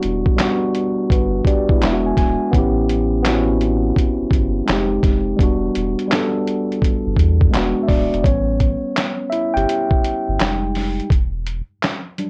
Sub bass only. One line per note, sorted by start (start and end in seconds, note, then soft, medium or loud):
0.04 0.24 E1 loud
1.11 1.41 G1 loud
1.83 2.13 E1 medium
2.18 2.37 D1 medium
2.54 3.92 A1 loud
4.21 4.25 G1 soft
4.31 4.62 G1 medium
4.69 4.99 F1 medium
5.04 5.34 F1 medium
5.40 5.70 E1 loud
5.76 5.95 E1 loud
7.06 7.16 G1 medium
7.17 7.48 E2 loud
7.54 7.74 E1 medium
7.89 8.09 D1 medium
8.13 8.23 E1 medium
8.25 8.75 A1 medium
9.56 9.66 G1 medium
10.28 10.38 G1 loud
10.40 11.01 F1 medium
11.11 11.61 E1 loud